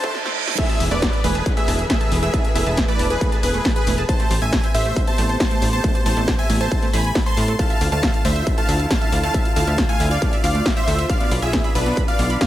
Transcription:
Already playing: A2 E3 C4 B4 C5 A5, reverse cymbal, riser
0.04 A3, kick, closed hi-hat
0.15 snare
0.26 A3, snare
0.47 A3, snare
0.58 E3 A3 E4 G#4 A4 B4 E5, kick, closed hi-hat, crash, downlifter
0.69 A5, closed hi-hat
0.80 E1, open hi-hat
0.91 E1 A3 B4 D5, closed hi-hat
1.02 A5, kick, snare, closed hi-hat
1.13 closed hi-hat
1.24 E1 A3 G#4 B4, open hi-hat
1.35 A5, closed hi-hat
1.46 kick, closed hi-hat
1.57 A3 G#4 E5, closed hi-hat
1.68 E1 A5, open hi-hat
1.79 closed hi-hat
1.90 A3 G#4 E5, kick, snare, closed hi-hat
2.01 A5, closed hi-hat
2.12 E1, open hi-hat
2.23 A3 G#4 E5, closed hi-hat
2.34 A5, kick, closed hi-hat
2.45 closed hi-hat
2.55 E1 A3 G#4 E5, open hi-hat
2.66 E1 A5, closed hi-hat
2.77 kick, snare, closed hi-hat
2.88 A3 B4 D5, closed hi-hat
2.99 E1 A5, open hi-hat
3.10 G#4 B4, closed hi-hat
3.21 A3, kick, closed hi-hat
3.32 A5, closed hi-hat
3.43 E1 G#4 B4, open hi-hat
3.54 A3, closed hi-hat
3.65 A5, kick, snare, open hi-hat
3.76 G#4 B4, closed hi-hat
3.87 E1 A3, open hi-hat
3.98 A5, closed hi-hat
4.09 C3 A3 B3 C5 A5, kick, closed hi-hat
4.20 A3, closed hi-hat
4.31 A1 C5, open hi-hat
4.42 A1 E5 G#5, closed hi-hat
4.53 A3, kick, snare, closed hi-hat
4.64 C5, closed hi-hat
4.74 A1 C5 E5, open hi-hat
4.85 A3, closed hi-hat
4.96 C5, kick, closed hi-hat
5.07 C5 A5, closed hi-hat
5.18 A1 A3, open hi-hat
5.29 C5, closed hi-hat
5.40 C5 A5, kick, snare, closed hi-hat
5.51 A3, closed hi-hat
5.62 A1 C5, open hi-hat
5.73 C5 A5, closed hi-hat
5.84 A3, kick, closed hi-hat
5.95 C5, closed hi-hat
6.06 A1 C5 A5, open hi-hat
6.17 A1 A3, closed hi-hat
6.28 C5, kick, snare, closed hi-hat
6.39 E5 G#5, closed hi-hat
6.50 A1 A3, open hi-hat
6.61 C5 A5, closed hi-hat
6.72 kick, closed hi-hat
6.83 A3, closed hi-hat
6.93 A1 C5 G#5 B5, open hi-hat
7.04 closed hi-hat
7.15 A3, kick, snare, open hi-hat
7.26 C5 A5 C6, closed hi-hat
7.37 A2, open hi-hat
7.48 A3, closed hi-hat
7.59 D3 A3 E4 F4 F5 A5, kick, closed hi-hat
7.70 E5, closed hi-hat
7.81 D2, open hi-hat
7.92 D2 A3 F5 A5, closed hi-hat
8.03 E5, kick, snare, closed hi-hat
8.14 closed hi-hat
8.25 D2 A3 C5 E5, open hi-hat
8.36 E5, closed hi-hat
8.47 kick, closed hi-hat
8.58 A3 F5 A5, closed hi-hat
8.69 D2 E5, open hi-hat
8.80 closed hi-hat
8.91 A3 F5 A5, kick, snare, closed hi-hat
9.02 E5, closed hi-hat
9.12 D2, open hi-hat
9.23 A3 F5 A5, closed hi-hat
9.34 E5, kick, closed hi-hat
9.45 closed hi-hat
9.56 D2 A3 F5 A5, open hi-hat
9.67 D2 E5, closed hi-hat
9.78 kick, snare, closed hi-hat
9.89 A3 F5 G#5, closed hi-hat
10.00 D2 E5, open hi-hat
10.11 D5 F5, closed hi-hat
10.22 A3, kick, closed hi-hat
10.33 E5, closed hi-hat
10.44 D2 D5 F5, open hi-hat
10.55 A3, closed hi-hat
10.66 E5, kick, snare, open hi-hat
10.77 C5 E5, closed hi-hat
10.88 D2 A3, open hi-hat
10.99 E5, closed hi-hat
11.09 B3 D4 D5 F5, kick, closed hi-hat
11.21 B3, closed hi-hat
11.31 B1 B5, open hi-hat
11.42 B1 G#4 E5, closed hi-hat
11.53 B3, kick, snare, closed hi-hat
11.64 B5, closed hi-hat
11.75 B1 D4 B4, open hi-hat
11.86 B3, closed hi-hat
11.97 B5, kick, closed hi-hat
12.08 D5 F5, closed hi-hat
12.19 B1 B3, open hi-hat
12.30 B5, closed hi-hat
12.41 D5 F5, kick, snare, closed hi-hat

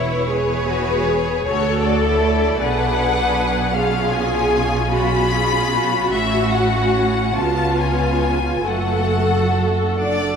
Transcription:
Already playing: E1 E2 E4 B4 C#5
0.30 G#4 B4 C#5
0.68 F#4
1.09 G#4
1.45 D2 F#4 A4 C#5
1.84 D5
2.04 E4
2.62 B1 B2 D4 G#4 B4 F#5
3.74 C#4 F4 G#4 F5
4.11 G#5
4.91 C#4 F4 F#4 B5
5.32 G#4
5.71 F#4
6.11 A1 A2 C#4 F#4 E5
6.53 F#5
7.35 C#2 C#3 B3 F4 A5
7.80 G#5
8.67 F#1 F#2 A3 F#4 A4 F#5
9.98 F#2 D4 D5

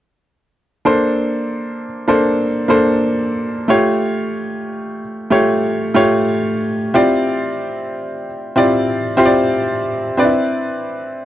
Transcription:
0.85 A#3 D4 A4 C5
2.08 A#3 D4 A4 C5
2.68 A#3 D4 A4 C5
3.68 A3 F4 G4 C#5
5.30 A3 F4 G4 C#5
5.94 A3 F4 G4 C#5
6.94 C4 E4 F4 G4 D5
8.56 C4 E4 F4 G4 D5
9.17 C4 E4 F4 G4 C5
9.25 D5
10.17 C4 D4 B4 D5
10.25 E4

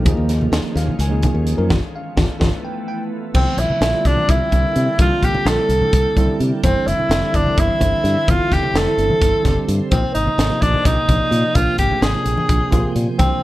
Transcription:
Already playing: D#3 F3
0.05 D#2 F3 G#3 A#3 C#4 D#4 G#4, kick, closed hi-hat, high conga, low conga
0.17 D#2
0.29 snare, closed hi-hat, low conga
0.41 low conga
0.52 D#2, snare, closed hi-hat
0.64 muted fingered electric bass stroke
0.76 D#2 F5, snare, closed hi-hat
0.89 high conga, low conga
0.99 C#2 G#5, closed hi-hat
1.09 F3 A#3 D#4 G#4
1.23 kick, closed hi-hat, low conga
1.35 D#2, low conga
1.47 closed hi-hat
1.57 F#2 F3 A#3 D#4 A#4
1.69 G1 E3 A3 B3 D4 F4 G4, kick, snare, high conga
1.96 F5
2.17 G1 D4 F4 G4, kick, snare, high conga
2.40 G1 D4 F4 G4, kick, snare, high conga
2.65 G5
2.88 G5
3.34 C2 D3 F3 G3 A#3 C4 D4 A4 G5, kick, crash, high conga, low conga
3.57 A#1 E4, closed hi-hat
3.70 muted fingered electric bass stroke, low conga
3.81 A#1, snare, closed hi-hat
3.93 D3 G3 C4 F4
4.05 C2 D4, kick, snare, closed hi-hat
4.17 high conga, low conga
4.29 C2 E4, kick, closed hi-hat
4.52 C2 D3 G3 C4 E4, kick, closed hi-hat, low conga
4.76 C3, closed hi-hat
4.98 C2 D3 G3 C4 F4, kick, closed hi-hat, high conga, low conga
5.22 A#1 G4, kick, closed hi-hat
5.35 low conga
5.45 A#1 A4, snare, closed hi-hat, low conga
5.56 D3 G3 C4 E4
5.69 C2, closed hi-hat
5.82 high conga, low conga
5.93 C2, kick, closed hi-hat
6.15 C2 D3 G3 C4 E4, kick, closed hi-hat, low conga
6.40 C3, closed hi-hat
6.63 G1 D3 E3 G3 C4 E4 C5 E5, kick, closed hi-hat, high conga, low conga
6.87 F1 E4, closed hi-hat
6.98 muted fingered electric bass stroke, low conga
7.09 F1, snare, closed hi-hat, low conga
7.21 D3 G3 C4 E4
7.34 G1 D4, kick, closed hi-hat
7.46 high conga, low conga
7.58 G1 E4, kick, closed hi-hat
7.79 G1 D3 G3 C4 D4, kick, closed hi-hat, low conga
8.04 G2, closed hi-hat
8.26 G1 D3 G3 C4 E4 F4, kick, closed hi-hat, high conga, low conga
8.40 low conga
8.51 F1 G4, kick, snare, closed hi-hat
8.63 muted fingered electric bass stroke, low conga
8.74 F1 A4, snare, closed hi-hat
8.86 D3 G3 C4 E4
8.98 G1, closed hi-hat, low conga
9.10 high conga, low conga
9.22 G1, kick, snare, closed hi-hat, low conga
9.43 G1 D3 G3 C4 G4, kick, snare, closed hi-hat, low conga
9.58 low conga
9.68 G2, closed hi-hat
9.80 low conga
9.90 A#1 C3 F3 A#3 C4 D#4 G#4 G5, kick, closed hi-hat, high conga, low conga
10.14 G#1 D#4, closed hi-hat
10.27 muted fingered electric bass stroke, low conga
10.38 G#1, snare, closed hi-hat, low conga
10.49 C3 F3 A#3 D#4
10.62 A#1 D4, kick, closed hi-hat
10.74 high conga, low conga
10.85 A#1 D#4, kick, snare, closed hi-hat, low conga
11.08 A#1 C3 F3 A#3 D5, kick, closed hi-hat, low conga
11.31 A#2, closed hi-hat
11.55 A#1 C3 F3 A#3 D4 F4, kick, closed hi-hat, high conga, low conga
11.78 G#1 G4, kick, closed hi-hat
11.90 muted fingered electric bass stroke, low conga
12.02 G#1 G#4, snare, closed hi-hat, low conga
12.14 C3 F3 A#3 D4
12.26 A#1, closed hi-hat
12.38 high conga, low conga
12.49 A#1, kick, closed hi-hat, low conga
12.71 A#1 C3 F3 A#3 F4, kick, closed hi-hat, low conga
12.96 A#2, closed hi-hat
13.18 C2 C3 F3 A#3 C4 D4 A4 A#4 G5, kick, closed hi-hat, high conga, low conga

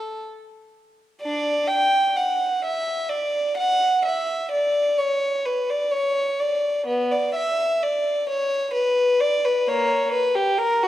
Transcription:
Already playing: A4
1.22 D4 D5
1.68 G5
2.16 F#5
2.65 E5
3.09 D5
3.57 F#5
4.05 E5
4.51 D5
4.98 C#5
5.45 B4
5.70 D5
5.91 C#5
6.39 D5
6.87 B3
7.11 D5
7.35 E5
7.83 D5
8.29 C#5
8.74 B4
9.20 D5
9.45 B4
9.68 A#3 C#5
10.12 B4
10.35 G4
10.58 A#4
10.83 F#4

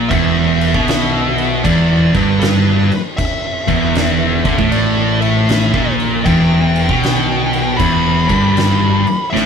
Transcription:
0.09 E1 E2 E5, kick, crash
0.61 crash
0.74 B1 B2, kick
0.88 snare, crash
1.38 crash
1.64 E1 E2 D5, kick, crash
2.14 G1 G2 B4, kick, crash
2.40 B4, snare, crash
2.92 crash
3.17 E5, kick, crash
3.67 E1 E2, kick, crash
3.95 snare, crash
4.45 D2 D3, kick, crash
4.58 A1 A2, kick
4.72 D5, crash
5.21 E5, crash
5.49 snare, crash
5.73 A#1 A#2, kick
6.00 crash
6.25 E1 E2 G5, kick, crash
6.76 crash
6.89 B1 B2, kick
7.03 snare, crash
7.53 crash
7.77 E1 E2 B5, kick, crash
8.29 G1 G2, kick, crash
8.57 snare, crash
9.07 crash
9.30 A1 A2 E5
9.35 snare

